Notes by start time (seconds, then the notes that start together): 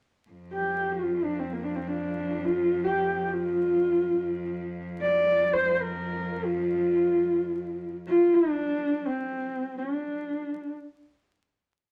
0.30 F2
0.53 G4
0.92 F4
1.24 D4
1.39 C4
1.53 A#3
1.64 D4
1.75 C4
1.88 D4
2.45 F4
2.84 G4
3.28 G4
3.33 F4
4.19 F2
5.02 D5
5.53 C5
5.75 C5
5.82 A#4
6.45 F4
8.09 F4
8.34 D4
9.06 C4
9.78 D4